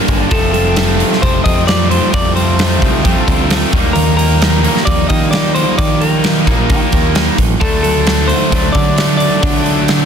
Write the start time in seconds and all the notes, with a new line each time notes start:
Already playing: G2 D3 G3 A#3 D4
0.08 G1 D3, kick, open hi-hat
0.31 F1 F2 C3 F3 A3 C4 A4, kick, open hi-hat
0.53 G3 A4, open hi-hat
0.76 G3, snare, open hi-hat
0.99 C4, open hi-hat
1.13 snare
1.22 F1 F2 C3 F3 G3 A3 C4 C5, kick, open hi-hat
1.44 F2 C4 D#5, kick, open hi-hat
1.67 F4 D5, snare, open hi-hat
1.90 G3 C5, open hi-hat
2.13 F2 C3 F3 A3 C4 D5, kick, open hi-hat
2.36 G3 C5, open hi-hat
2.59 G3, snare, open hi-hat
2.82 C2 C4, kick, open hi-hat
3.04 F2 C3 F3 G3 A3 C4, kick, open hi-hat
3.27 D2 C4, kick, open hi-hat
3.50 F4, snare, open hi-hat
3.72 D#2 D#3 G3 A#3 D#4, kick, open hi-hat
3.93 D#2 D#3 A#4, open hi-hat
4.17 F3 A#4, open hi-hat
4.41 F3, snare, open hi-hat
4.63 D#3 G3 A#3 D#4, open hi-hat
4.77 snare
4.85 D#2 F3 D5, kick, open hi-hat
5.09 D#3 A#3 D#5, kick, open hi-hat
5.31 D#4 D5, snare, open hi-hat
5.54 D#3 F3 G3 A#3 D#4 C5, open hi-hat
5.78 D#3 D5, kick, open hi-hat
6.01 F3 A#4, open hi-hat
6.24 F3, snare, open hi-hat
6.47 A#1 D#3 G3 A#3 D#4, kick, open hi-hat
6.70 D#3 F3, kick, open hi-hat
6.92 D#2 A#3, kick, open hi-hat
7.15 D#4, snare, open hi-hat
7.38 A1 F3, kick, open hi-hat
7.60 D2 D3 F#3 A3 D4 A4, kick, open hi-hat
7.83 F#3 A4, open hi-hat
8.07 D3, snare, open hi-hat
8.28 F#3 C5, open hi-hat
8.52 D2 D3 F#3 A3 D4, kick, open hi-hat
8.72 D3 F#3 D5, kick, open hi-hat
8.97 A3, snare, open hi-hat
9.17 D3 D5, open hi-hat
9.42 D3 F#3 A3 D4, kick, open hi-hat
9.65 F#3, open hi-hat
9.88 D3, snare, open hi-hat